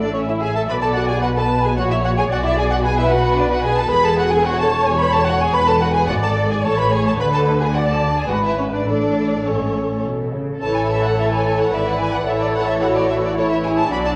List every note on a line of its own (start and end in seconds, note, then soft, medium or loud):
0.00 0.69 A1 soft
0.00 0.69 A2 soft
0.00 0.15 D4 soft
0.00 0.14 A4 soft
0.00 0.15 D5 medium
0.15 0.28 C#4 soft
0.15 0.20 C#5 medium
0.15 0.68 E5 medium
0.28 0.42 E4 soft
0.28 0.35 E5 medium
0.42 0.55 G#4 medium
0.42 0.55 G#5 medium
0.55 0.61 A4 medium
0.55 0.62 A5 medium
0.69 1.75 B1 medium
0.69 1.76 B2 soft
0.69 0.74 B4 medium
0.69 1.23 D5 medium
0.69 0.75 B5 medium
0.83 0.96 A4 medium
0.83 0.89 A5 medium
0.95 1.10 F#4 medium
0.95 1.09 F#5 medium
1.09 1.23 G#4 medium
1.09 1.23 G#5 medium
1.22 1.28 F#4 medium
1.22 1.77 B4 medium
1.22 1.28 F#5 medium
1.37 1.45 A4 medium
1.37 1.63 A5 medium
1.64 1.69 G#4 soft
1.64 1.78 G#5 medium
1.77 2.32 A#1 medium
1.77 2.31 A#2 medium
1.77 1.91 F#4 medium
1.77 2.30 C#5 medium
1.77 1.82 F#5 medium
1.91 2.05 E4 medium
1.91 1.97 E5 medium
2.05 2.10 F#4 medium
2.05 2.11 F#5 medium
2.18 2.24 G#4 medium
2.18 2.24 G#5 medium
2.31 3.90 B1 medium
2.31 3.90 B2 medium
2.31 2.45 F#4 medium
2.31 2.85 D5 medium
2.31 2.37 F#5 medium
2.45 2.58 E4 medium
2.45 2.58 E5 medium
2.58 2.72 G#4 medium
2.58 2.64 G#5 medium
2.72 2.85 F#4 medium
2.72 2.77 F#5 medium
2.85 2.99 G#4 medium
2.85 3.91 B4 medium
2.85 2.98 G#5 medium
3.00 3.12 E4 medium
3.00 3.12 E5 medium
3.13 3.39 F#4 medium
3.13 3.39 F#5 medium
3.39 3.53 D4 medium
3.39 3.52 D5 medium
3.52 3.65 F#4 medium
3.52 3.65 F#5 medium
3.64 3.79 G#4 medium
3.64 3.78 G#5 medium
3.79 3.93 A4 medium
3.79 3.93 A5 medium
3.92 5.51 E1 medium
3.92 5.51 E2 medium
3.92 4.46 G#4 medium
3.92 4.07 B4 medium
3.92 4.06 B5 medium
4.07 4.20 A4 medium
4.07 4.20 A5 medium
4.19 4.34 F#4 medium
4.19 4.33 F#5 medium
4.33 4.47 G#4 medium
4.33 4.47 G#5 medium
4.46 4.60 F#4 medium
4.46 5.55 C#5 medium
4.46 4.60 F#5 medium
4.60 4.68 A4 medium
4.60 4.87 A5 medium
4.87 4.93 G#4 medium
4.87 5.01 G#5 medium
5.00 5.07 B4 medium
5.00 5.14 B5 medium
5.14 5.21 A4 medium
5.14 5.28 A5 medium
5.27 5.33 F#4 medium
5.27 5.41 F#5 medium
5.40 5.55 G#4 medium
5.40 5.54 G#5 medium
5.54 6.08 E1 medium
5.54 6.09 E2 medium
5.54 5.68 B4 medium
5.54 6.10 B4 medium
5.54 5.68 B5 medium
5.68 5.82 A4 medium
5.68 5.82 A5 medium
5.81 5.88 F#4 medium
5.81 5.95 F#5 medium
5.95 6.09 G#4 medium
5.95 6.09 G#5 medium
6.08 6.65 G#1 medium
6.08 6.65 G#2 medium
6.08 6.15 F#4 medium
6.08 6.65 D5 medium
6.08 6.14 F#5 medium
6.23 6.50 A4 medium
6.23 6.31 A5 medium
6.51 6.56 G#4 soft
6.51 6.64 G#5 medium
6.64 7.20 A1 medium
6.64 7.20 A2 medium
6.64 6.78 A4 medium
6.64 7.20 C#5 medium
6.64 6.78 A5 medium
6.79 6.92 B4 medium
6.79 6.93 B5 medium
6.92 7.06 G#4 medium
6.92 7.06 G#5 medium
7.07 7.20 A4 medium
7.07 7.12 A5 medium
7.19 8.28 D2 medium
7.19 8.28 D3 medium
7.19 7.33 B4 medium
7.19 7.75 B4 medium
7.19 7.26 B5 medium
7.33 7.60 A4 medium
7.33 7.42 A5 medium
7.60 7.66 G#4 medium
7.60 7.75 G#5 medium
7.74 7.80 F#4 medium
7.74 8.30 D5 medium
7.74 7.88 F#5 medium
7.88 7.96 A4 medium
7.88 8.16 A5 medium
8.16 8.30 G#4 soft
8.16 8.31 G#5 medium
8.30 8.87 G#1 soft
8.30 8.87 G#2 soft
8.30 8.44 F#4 medium
8.30 8.87 B4 soft
8.30 8.45 F#5 medium
8.44 8.58 E4 soft
8.44 8.59 E5 medium
8.58 8.64 C#4 soft
8.58 8.64 C#5 medium
8.73 8.87 D4 soft
8.73 8.88 D5 medium
8.88 10.42 A1 soft
8.88 9.42 A2 soft
8.88 9.46 D4 medium
8.88 10.34 A4 soft
8.88 9.47 D5 medium
9.47 9.75 G#2 soft
9.47 10.05 C#4 soft
9.47 10.06 C#5 soft
9.77 10.05 A2 soft
10.05 10.34 B2 soft
10.34 10.63 C#3 soft
10.63 11.69 A1 soft
10.63 11.14 E3 soft
10.63 11.14 E4 soft
10.63 11.14 A4 soft
10.63 11.69 A4 medium
10.63 11.14 C#5 soft
10.63 10.75 A5 medium
10.77 10.91 G#5 medium
10.91 11.04 E5 medium
11.05 11.19 F#5 medium
11.17 11.72 E3 soft
11.17 11.72 E4 soft
11.17 11.72 A4 soft
11.17 11.71 C#5 soft
11.17 11.32 E5 medium
11.33 11.59 G#5 medium
11.60 11.74 F#5 medium
11.73 12.27 G#1 soft
11.73 12.26 E3 soft
11.73 12.26 E4 soft
11.73 12.28 B4 soft
11.73 12.27 B4 medium
11.73 12.28 D5 soft
11.73 11.87 E5 medium
11.87 12.01 F#5 medium
12.00 12.13 G#5 medium
12.15 12.28 F#5 medium
12.27 13.87 A1 soft
12.27 13.35 E3 soft
12.27 13.35 E4 soft
12.27 13.36 A4 medium
12.27 12.81 A4 medium
12.27 13.36 C#5 medium
12.27 12.41 E5 medium
12.42 12.47 D5 medium
12.55 12.68 F#5 medium
12.68 12.73 E5 medium
12.81 13.37 F#4 soft
12.81 12.87 F#5 medium
12.96 13.09 D5 medium
13.10 13.15 E5 medium
13.25 13.37 D5 medium
13.37 13.90 E3 soft
13.37 13.90 E4 soft
13.37 13.91 E4 soft
13.37 13.45 A4 soft
13.37 13.51 C#5 medium
13.37 13.90 C#5 soft
13.51 13.56 E5 medium
13.64 13.90 G#4 soft
13.64 13.70 G#5 medium
13.78 13.91 A5 medium
13.91 14.16 B1 medium
13.91 14.16 F#3 medium
13.91 14.16 D4 soft
13.91 14.16 D4 medium
13.91 14.16 F#4 medium
13.91 14.16 D5 soft
13.91 13.97 B5 medium
14.06 14.11 A5 medium